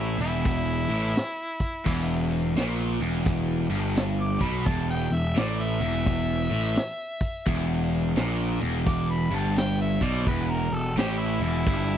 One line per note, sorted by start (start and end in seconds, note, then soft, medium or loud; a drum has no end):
0.00 0.16 A1 medium
0.00 0.18 A2 loud
0.00 0.20 E4 medium
0.19 0.85 E1 medium
0.19 0.88 E2 loud
0.19 2.28 E4 loud
0.19 open hi-hat medium
0.45 kick loud
0.45 open hi-hat medium
0.89 1.13 A1 medium
0.89 1.15 A2 loud
0.89 open hi-hat medium
1.16 snare loud
1.16 open hi-hat medium
1.60 kick medium
1.60 open hi-hat medium
1.86 2.52 E1 loud
1.86 2.55 E2 loud
1.86 kick loud
1.86 crash medium
2.30 open hi-hat medium
2.56 2.97 A#1 medium
2.56 2.99 A#2 loud
2.56 snare loud
2.56 open hi-hat medium
2.80 snare soft
3.00 3.67 E1 medium
3.00 3.69 E2 medium
3.00 open hi-hat medium
3.26 kick loud
3.26 open hi-hat medium
3.70 4.37 G1 medium
3.70 4.40 G2 medium
3.70 open hi-hat medium
3.96 snare loud
3.96 open hi-hat medium
4.21 4.45 D6 loud
4.41 4.65 B1 medium
4.41 4.66 B2 medium
4.41 4.68 B5 medium
4.41 kick medium
4.41 open hi-hat medium
4.66 5.08 E1 loud
4.66 5.09 E2 loud
4.66 4.89 A5 medium
4.66 kick loud
4.66 open hi-hat medium
4.90 5.15 G5 medium
5.10 5.35 E1 medium
5.10 5.31 E2 medium
5.10 5.40 E5 loud
5.10 open hi-hat medium
5.36 5.78 A1 loud
5.36 5.79 A2 loud
5.36 5.63 D5 medium
5.36 snare loud
5.36 open hi-hat medium
5.60 7.67 E5 loud
5.60 snare soft
5.80 6.47 E1 medium
5.80 6.49 E2 loud
5.80 open hi-hat medium
6.06 kick loud
6.06 open hi-hat medium
6.51 6.75 A1 loud
6.51 6.76 A2 loud
6.51 open hi-hat medium
6.76 snare loud
6.76 open hi-hat medium
7.20 kick medium
7.20 open hi-hat medium
7.46 8.13 E1 loud
7.46 8.16 E2 loud
7.46 kick loud
7.46 open hi-hat medium
7.90 open hi-hat medium
8.16 8.58 A#1 loud
8.16 8.60 A#2 loud
8.16 snare loud
8.16 open hi-hat medium
8.40 snare soft
8.60 9.27 E1 medium
8.60 9.30 E2 loud
8.60 open hi-hat medium
8.86 9.13 D6 medium
8.86 kick loud
8.86 open hi-hat medium
9.11 9.36 B5 loud
9.31 9.97 G1 loud
9.31 10.00 G2 loud
9.31 9.57 A5 loud
9.31 open hi-hat medium
9.56 9.80 G5 loud
9.56 snare loud
9.56 open hi-hat medium
9.82 10.05 E5 medium
10.01 10.25 B1 medium
10.01 10.26 B2 loud
10.01 10.26 D5 medium
10.01 kick medium
10.01 open hi-hat medium
10.27 10.68 E1 medium
10.27 10.69 E2 loud
10.27 10.52 B4 medium
10.27 kick medium
10.27 open hi-hat medium
10.51 10.76 A#4 loud
10.71 10.95 E1 medium
10.71 10.91 E2 medium
10.71 10.97 A4 loud
10.71 open hi-hat medium
10.96 11.37 A1 loud
10.96 11.40 A2 loud
10.96 11.21 G4 loud
10.96 snare loud
10.96 open hi-hat medium
11.20 11.42 E4 medium
11.40 11.64 E1 loud
11.40 11.66 E2 medium
11.40 11.97 E4 loud
11.40 open hi-hat medium
11.67 11.97 G1 loud
11.67 11.97 G2 loud
11.67 kick loud
11.67 open hi-hat medium